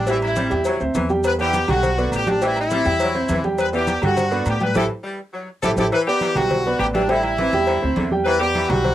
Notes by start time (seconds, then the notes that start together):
Already playing: A1
0.07 E3 G3 E4 G4 G5, cowbell, low agogo, maracas
0.22 E4, high conga, low agogo, maracas
0.36 G3 C4 C5 E5, cowbell, high conga, maracas
0.50 E2 G3 G4 G5, cowbell, high conga, low agogo, maracas
0.65 F#3, cowbell, high conga, low agogo, maracas
0.80 D2 C4 C5 E5, high conga, maracas
0.94 E2 E3, cowbell, high conga, low timbale, low agogo, maracas
1.09 G3 G4 G5, high conga, maracas
1.24 B4, cowbell, high conga, low agogo, maracas
1.38 E3 B3 G4 B4 D5, high conga, low agogo, maracas
1.53 cowbell, high conga, low agogo, maracas
1.68 B1 D3 G3 F#4 G4 G5, cowbell, low conga, low agogo, maracas
1.83 cowbell, high conga, low conga, low agogo, maracas
1.98 D3 B3 B4 D5, high conga, maracas
2.12 A1 G4, cowbell, high conga, low agogo, maracas
2.27 G3 D4 G4 G5, cowbell, high conga, maracas
2.42 E3 G3 E4 G4 G5, cowbell, high conga, low agogo, maracas
2.56 E4, high conga, low agogo, maracas
2.71 G3 C4 C5 E5, cowbell, high conga, maracas
2.85 E2 G3 G4 G5, cowbell, high conga, low agogo, maracas
3.00 F#3, cowbell, high conga, low agogo, maracas
3.14 C4 C5 E5, high conga, maracas
3.29 E2 E3, cowbell, high conga, low timbale, low agogo, maracas
3.44 G3 G4 G5, high conga, maracas
3.58 B4, cowbell, high conga, low agogo, maracas
3.73 E3 B3 G4 B4 D5, high conga, low agogo, maracas
3.87 cowbell, high conga, low agogo, maracas
4.01 G2 D3 G3 F#4 G4 G5, cowbell, low conga, low agogo, maracas
4.17 cowbell, high conga, low conga, low agogo, maracas
4.31 D3 B3 B4 D5, high conga, maracas
4.46 A2 G4, cowbell, high conga, low agogo, maracas
4.60 G3 G4 G5, cowbell, high conga, maracas
4.64 B4
4.74 A1 E3 E4 G4 A4, cowbell, high conga, high timbale, maracas
5.03 G3
5.33 F#3
5.63 A1 E3 E4 G4 A4, cowbell, high conga, high timbale, maracas
5.76 A1 E4 G4 A4, cowbell, high conga, high timbale, maracas
5.92 E3 B4, cowbell, low agogo
6.07 B3 G4 B4 D5, high conga, low agogo
6.21 E3, cowbell, high conga, low agogo
6.35 B1 G3 F#4 G4 G5, cowbell, low conga, low agogo
6.51 cowbell, high conga, low conga, low agogo
6.65 B3 B4 D5, high conga
6.79 A1 G4, cowbell, high conga, low agogo
6.94 E3 G3 D4 G4 G5, cowbell, high conga
7.09 D3 G3 E4 G4 G5, cowbell, low agogo
7.23 E4, high conga, low agogo
7.38 E3 C4 C5 E5, cowbell, high conga
7.53 E2 G3 G4 G5, cowbell, high conga, low agogo
7.67 D3, cowbell, high conga, low agogo
7.82 D2 C4 C5 E5, high conga
7.96 E2 D3, cowbell, high conga, low timbale, low agogo
8.11 G3 G4 G5, high conga
8.25 E3 B4, cowbell, low agogo
8.40 B3 G4 B4 D5, high conga, low agogo
8.55 E3, cowbell, high conga, low agogo
8.69 B1 G3 F#4 G4 G5, cowbell, low conga, low agogo
8.84 cowbell, high conga, low conga, low agogo